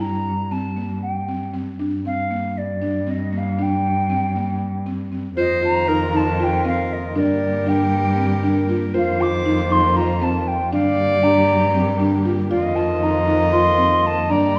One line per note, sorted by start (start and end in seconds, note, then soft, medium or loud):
0.00 1.78 G2 medium
0.00 0.32 E4 medium
0.00 0.53 A#5 medium
0.51 0.68 C4 medium
0.51 1.02 A5 medium
0.77 1.10 A#3 medium
1.02 1.56 G5 medium
1.28 1.45 C4 medium
1.54 1.70 C4 medium
1.78 5.33 G2 medium
1.78 1.96 D4 medium
2.05 2.22 C4 medium
2.05 2.59 F5 medium
2.31 2.64 A#3 medium
2.57 3.11 D5 medium
2.82 2.98 D4 medium
3.07 3.23 C4 medium
3.07 3.39 D#5 medium
3.33 3.49 A#3 medium
3.37 3.64 F5 medium
3.59 3.92 D4 medium
3.59 4.88 G5 medium
4.10 4.26 C4 medium
4.35 4.69 A#3 medium
4.86 5.03 C4 medium
5.12 5.28 C4 medium
5.36 7.17 F2 medium
5.36 7.14 D#3 medium
5.36 10.68 A#3 medium
5.36 7.14 F4 medium
5.36 5.54 F4 medium
5.36 5.90 C5 loud
5.36 5.62 D#5 medium
5.63 5.79 F4 medium
5.63 6.18 A#5 loud
5.88 6.05 D#4 medium
5.88 7.16 A#4 medium
6.14 6.30 D#4 medium
6.14 6.45 A5 medium
6.40 6.56 F4 medium
6.40 6.67 G5 medium
6.65 6.98 C4 medium
6.65 6.94 F5 medium
6.93 7.20 D#5 medium
7.16 8.96 G2 medium
7.16 8.93 D3 medium
7.16 7.49 D4 medium
7.16 8.93 G4 medium
7.16 8.96 A#4 medium
7.16 7.70 D5 medium
7.67 8.00 D4 medium
7.67 8.70 G5 medium
8.18 8.34 C4 medium
8.43 8.60 D4 medium
8.69 8.86 F4 medium
8.94 10.74 F2 medium
8.94 10.71 D#3 medium
8.94 9.11 F4 medium
8.94 10.71 F4 medium
8.94 10.46 C5 medium
8.94 9.22 F5 loud
9.20 9.37 F4 medium
9.20 9.73 D6 loud
9.46 9.62 D#4 medium
9.70 9.87 D#4 medium
9.70 9.97 C6 medium
9.96 10.13 F4 medium
9.96 10.25 A#5 medium
10.22 10.55 C4 medium
10.22 10.49 A5 medium
10.47 10.73 G5 medium
10.72 12.53 G2 medium
10.72 12.49 D3 medium
10.72 14.59 A#3 medium
10.72 11.06 D4 medium
10.72 12.49 G4 medium
10.72 12.22 D5 loud
10.72 11.24 F5 medium
11.23 11.56 D4 medium
11.23 12.25 A#5 medium
11.75 11.91 C4 medium
12.00 12.17 D4 medium
12.25 12.42 F4 medium
12.50 14.31 F2 medium
12.50 14.28 D#3 medium
12.50 12.68 F4 medium
12.50 14.28 F4 medium
12.50 14.32 D#5 loud
12.50 12.77 F5 medium
12.75 12.93 F4 medium
12.75 13.04 A5 medium
13.02 13.19 D#4 medium
13.02 13.53 A#5 medium
13.28 13.44 D#4 medium
13.52 13.70 F4 medium
13.52 14.08 C6 loud
13.78 14.11 C4 medium
14.06 14.31 A5 medium
14.30 14.59 G2 medium
14.30 14.59 D3 medium
14.30 14.59 D4 medium
14.30 14.59 G4 medium
14.30 14.59 D5 loud
14.30 14.57 A#5 medium
14.56 14.59 C6 medium